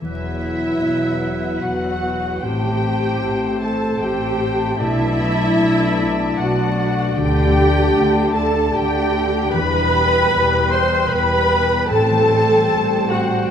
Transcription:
0.01 double bass section E1, cello section E2, harp E3, french horn section F#3 B3, viola section E4, clarinet B4, violin section E5, flute section F#5
0.21 harp B3
0.42 harp E4
0.62 harp F#4
0.82 double bass section E1, cello section E2, harp B4
1.02 harp E5
1.22 harp F#5
1.42 harp B5
1.60 double bass section E1, cello section E2, viola section F#4, violin section F#5, harp F#5
1.82 harp E5
2.02 harp B4
2.22 harp E4
2.41 double bass section A1, harp A2, cello section A2, french horn section A3 C4, viola section G4, clarinet C5, violin section G5, flute section A5
2.63 harp E3
2.82 harp C4
3.03 harp E4
3.22 double bass section A1, cello section A2, harp A4
3.42 harp C5
3.61 viola section A4, harp E5, violin section A5
3.82 harp A5
4.01 double bass section A1, cello section A2, viola section G4, harp E5, violin section G5
4.22 harp C5
4.41 harp A4
4.60 harp C4
4.78 double bass section B1, harp B2, cello section B2, french horn section D4, viola section E4, clarinet D5, violin section E5
5.00 harp F#3
5.19 harp B3
5.39 harp D4
5.58 double bass section B1, cello section B2, harp A4
5.78 harp B4
5.98 harp D5
6.18 harp A5
6.37 double bass section B1, cello section B2, viola section F#4, harp D5, violin section F#5
6.58 harp B4
6.77 harp A4
6.97 harp B3
7.16 double bass section D2, harp D3, cello section D3, french horn section A3, viola section G4, violin section G5, flute section A5
7.36 harp A3
7.56 harp D4
7.75 harp G4
7.94 double bass section D2, cello section D3, harp A4
8.15 harp D5
8.35 viola section A4, violin section A5
8.54 harp A5
8.74 double bass section D2, cello section D3, viola section G4, violin section G5
8.94 harp D5
9.15 harp A4
9.34 harp D4
9.53 double bass section E1, cello section E2, harp E3, french horn section G3 G4, viola section B4, clarinet B4, flute section G5, violin section B5
9.73 harp G3
9.93 harp B3
10.12 harp E4
10.32 double bass section E1, cello section E2, harp G4
10.71 viola section C5, harp E5, violin section C6
10.92 harp B5
11.10 double bass section E1, cello section E2, viola section B4, harp G5, violin section B5
11.31 harp B4
11.51 harp G4
11.71 harp B3
11.90 double bass section A1, harp A2, cello section A2, french horn section G3 C4, viola section A4, clarinet C5, violin section A5
12.10 harp E3
12.30 harp G3
12.50 harp C4
12.70 double bass section A1, cello section A2
12.90 harp G4
13.10 viola section F#4, harp C5, violin section F#5
13.31 harp A5
13.47 violin section G5

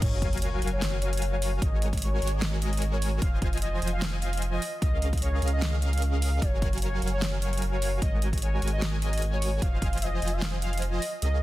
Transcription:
0.02 sub bass F#1, analog polysynth F#3 F#4, soft synth lead C#5, kick, closed hi-hat, crash, sub drop
0.22 kick, closed hi-hat
0.33 closed hi-hat
0.37 closed hi-hat
0.42 soft synth lead C#5, closed hi-hat
0.62 sub bass F#1, analog polysynth F#3 F#4 A#4 F5 G#5, closed hi-hat
0.68 closed hi-hat
0.73 soft synth lead C#5
0.82 snare, closed hi-hat
1.02 soft synth lead C#5, closed hi-hat
1.13 closed hi-hat
1.17 closed hi-hat
1.22 closed hi-hat
1.33 soft synth lead C#5
1.42 open hi-hat
1.62 sub bass G#1, soft synth lead D#5, kick, closed hi-hat
1.82 closed hi-hat
1.93 kick, closed hi-hat
1.98 closed hi-hat
2.02 soft synth lead C#5, closed hi-hat
2.22 sub bass G#1, analog polysynth G#3 F#4 A#4 C#5 G#5, closed hi-hat
2.27 closed hi-hat
2.33 soft synth lead D#5
2.42 snare, closed hi-hat
2.62 soft synth lead D#5, closed hi-hat
2.73 closed hi-hat
2.77 closed hi-hat
2.82 closed hi-hat
2.93 soft synth lead C#5
3.02 open hi-hat
3.22 sub bass F1, soft synth lead F5, kick, closed hi-hat
3.42 kick, closed hi-hat
3.53 closed hi-hat
3.57 closed hi-hat
3.62 soft synth lead D#5, closed hi-hat
3.82 sub bass F1, analog polysynth F3 F4 C5 D#5 G#5, closed hi-hat
3.88 closed hi-hat
3.93 soft synth lead F5
4.02 snare, closed hi-hat
4.22 soft synth lead F5, closed hi-hat
4.33 closed hi-hat
4.37 closed hi-hat
4.42 closed hi-hat
4.53 soft synth lead D#5
4.62 open hi-hat
4.82 sub bass C#2, analog polysynth C#4 G#4 A#4 D#5 F5, soft synth lead D#5, kick, closed hi-hat
5.02 closed hi-hat
5.13 kick, closed hi-hat
5.18 closed hi-hat
5.22 soft synth lead C#5, closed hi-hat
5.42 sub bass C#2, analog polysynth C#4 G#4 A#4 D#5 F5, closed hi-hat
5.48 closed hi-hat
5.53 soft synth lead D#5
5.62 snare, closed hi-hat
5.82 soft synth lead F5, closed hi-hat
5.93 closed hi-hat
5.98 closed hi-hat
6.02 closed hi-hat
6.13 soft synth lead F5
6.22 open hi-hat
6.42 sub bass F#1, analog polysynth F#3 F#4 A#4 F5 G#5, soft synth lead C#5, kick, closed hi-hat
6.62 kick, closed hi-hat
6.73 closed hi-hat
6.78 closed hi-hat
6.82 soft synth lead C#5, closed hi-hat
7.02 sub bass F#1, analog polysynth F#3 F#4 A#4 F5 G#5, closed hi-hat
7.08 closed hi-hat
7.13 soft synth lead C#5
7.22 snare, closed hi-hat
7.42 soft synth lead C#5, closed hi-hat
7.53 closed hi-hat
7.58 closed hi-hat
7.62 closed hi-hat
7.73 soft synth lead C#5
7.82 open hi-hat
8.02 sub bass G#1, analog polysynth G#3 F#4 A#4 C#5 G#5, soft synth lead D#5, kick, closed hi-hat
8.22 closed hi-hat
8.33 kick, closed hi-hat
8.38 closed hi-hat
8.42 soft synth lead C#5, closed hi-hat
8.62 sub bass G#1, analog polysynth G#3 F#4 A#4 C#5 G#5, closed hi-hat
8.68 closed hi-hat
8.73 soft synth lead D#5
8.82 snare, closed hi-hat
9.02 soft synth lead D#5, closed hi-hat
9.13 closed hi-hat
9.18 closed hi-hat
9.22 closed hi-hat
9.33 soft synth lead C#5
9.42 open hi-hat
9.62 sub bass F1, analog polysynth F3 F4 C5 D#5 G#5, soft synth lead F5, kick, closed hi-hat
9.82 kick, closed hi-hat
9.93 closed hi-hat
9.98 closed hi-hat
10.02 soft synth lead D#5, closed hi-hat
10.22 sub bass F1, analog polysynth F3 F4 C5 D#5 G#5, closed hi-hat
10.28 closed hi-hat
10.33 soft synth lead F5
10.42 snare, closed hi-hat
10.62 soft synth lead F5, closed hi-hat
10.73 closed hi-hat
10.78 closed hi-hat
10.82 closed hi-hat
10.93 soft synth lead D#5
11.02 open hi-hat
11.22 sub bass C#2, analog polysynth C#4 G#4 A#4 D#5 F5, soft synth lead D#5, closed hi-hat

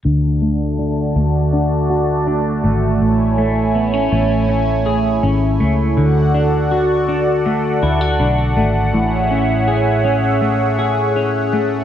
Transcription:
0.04 fingered electric bass D2, clean electric guitar D3, analog synth pad A3 F#4 D5 A5
0.42 clean electric guitar A3
0.79 clean electric guitar D4
1.16 fingered electric bass D2, clean electric guitar A3
1.53 clean electric guitar D4
1.90 clean electric guitar F#4
2.27 clean electric guitar D4
2.64 fingered electric bass G#1, clean electric guitar A3
3.00 fingered electric bass A1, analog synth pad E4 C#5 G#5
3.38 clean electric guitar A3
3.75 clean electric guitar B3
3.94 clean electric guitar C#4
4.12 fingered electric bass A1, clean electric guitar A3
4.49 clean electric guitar C#4
4.86 clean electric guitar G#4
5.23 fingered electric bass G#1, clean electric guitar C#4
5.60 fingered electric bass C#2, clean electric guitar A3
5.97 fingered electric bass D2, clean electric guitar D3, analog synth pad F#4 A4 D5 F#5
6.34 clean electric guitar D4
6.71 clean electric guitar F#4
7.08 clean electric guitar D4
7.46 clean electric guitar A3
7.83 fingered electric bass D2, clean electric guitar E4
8.01 clean electric guitar F#4
8.20 fingered electric bass B1, clean electric guitar D4
8.57 fingered electric bass G#1, clean electric guitar A3
8.93 fingered electric bass A1, clean electric guitar A2, analog synth pad G#4 C#5 E5
9.31 clean electric guitar C#4
9.68 clean electric guitar G#4
10.05 clean electric guitar C#4
10.42 clean electric guitar A3
10.79 clean electric guitar G#4
11.16 clean electric guitar C#4
11.53 clean electric guitar A3

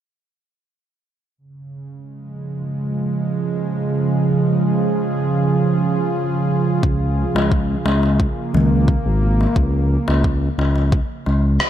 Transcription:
1.38 analog synth pad C#3
1.92 analog synth pad G#3
2.12 analog synth pad F3
2.44 analog synth pad F4
3.09 analog synth pad G#4
6.83 analog synth bass C#2, kick
7.35 analog synth bass C#2, darbuka tek
7.51 kick
7.79 analog synth pad A#3
7.86 analog synth bass C#2, darbuka tek
8.03 darbuka ka
8.20 kick
8.54 analog synth bass C#2, darbuka dum
8.88 kick
9.06 analog synth bass G#1
9.41 darbuka tek
9.56 analog synth bass C#2, kick
10.08 analog synth bass C#2, darbuka tek
10.24 kick
10.58 analog synth bass C#2, darbuka tek
10.76 darbuka ka
10.92 kick
11.26 analog synth bass C#2, darbuka ka
11.60 cross-stick

